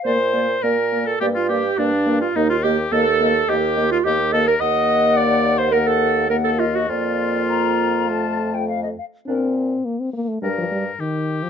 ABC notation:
X:1
M:4/4
L:1/16
Q:1/4=104
K:Bb
V:1 name="Flute"
d2 d2 d2 d2 d2 d2 d2 d2 | e2 e2 e2 e2 e2 e2 e2 e2 | _g8 g4 g2 e2 | d4 b4 a3 g f e f2 |
B2 z6 B2 z6 |]
V:2 name="Clarinet"
c4 B3 A G F G2 D3 F | E F G2 A4 G3 F G2 A B | e4 d3 c B A3 B A F _G | F12 z4 |
D2 z6 D2 z6 |]
V:3 name="Oboe"
c4 B3 A G F G2 D3 F | E F G2 A4 G3 F G2 A B | e4 d3 c B A3 B A F _G | F12 z4 |
z8 B4 G4 |]
V:4 name="French horn"
B,2 B,2 B,2 B,2 B,2 B,2 B,2 B,2 | B,2 B,2 B,2 B,2 B,2 B,2 B,2 B,2 | B,8 B,4 B,4 | B,8 A,6 z2 |
C4 B, C B, A, G, F, G,2 E,3 F, |]
V:5 name="Bassoon" clef=bass
B,,4 B,,4 G,,4 G,,4 | E,,4 E,,4 E,,4 E,,4 | E,,16 | F,,12- F,,2 z2 |
B,,4 z4 G,,4 z4 |]